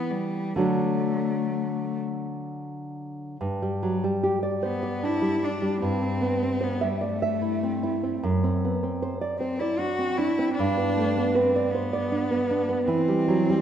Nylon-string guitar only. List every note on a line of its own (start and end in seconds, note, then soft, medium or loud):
0.00 0.53 E3 medium
0.00 0.54 G3 soft
0.00 0.55 D4 soft
0.56 3.36 D3 soft
0.56 3.37 F#3 soft
0.56 3.37 D4 soft
3.41 5.79 G2 soft
3.62 3.95 G3 soft
3.83 4.03 F#3 soft
4.04 4.36 G3 soft
4.23 4.42 G4 soft
4.43 4.75 D5 soft
4.63 4.83 C5 soft
4.83 5.16 D5 soft
5.03 5.36 D4 soft
5.22 5.55 G3 soft
5.43 5.75 D4 soft
5.62 5.83 G3 soft
5.82 8.17 G2 soft
6.02 6.34 C4 soft
6.21 6.42 B3 soft
6.43 6.74 C4 soft
6.61 6.81 C5 soft
6.81 7.01 E5 soft
7.01 7.21 D5 soft
7.22 7.54 E5 soft
7.42 7.74 E4 soft
7.63 7.95 C4 soft
7.83 8.15 E4 soft
8.03 8.23 C4 soft
8.23 10.52 F#2 soft
8.44 8.74 C4 soft
8.64 8.82 B3 soft
8.83 9.13 C4 soft
9.02 9.21 C5 soft
9.21 9.40 D5 soft
9.41 9.59 C5 soft
9.61 9.90 D5 soft
9.79 10.09 D4 soft
9.98 10.29 C4 soft
10.18 10.48 D4 soft
10.39 10.57 C4 soft
10.59 12.84 G2 soft
10.77 11.07 B3 soft
10.96 11.15 A3 soft
11.17 11.46 B3 soft
11.35 11.56 B4 soft
11.56 11.74 D5 soft
11.75 11.91 C5 soft
11.93 12.22 D5 soft
12.12 12.41 D4 soft
12.31 12.60 B3 soft
12.51 12.80 D4 soft
12.69 12.87 B3 soft
12.88 13.61 E3 medium
13.08 13.40 G3 soft
13.28 13.48 F#3 soft
13.50 13.61 G3 soft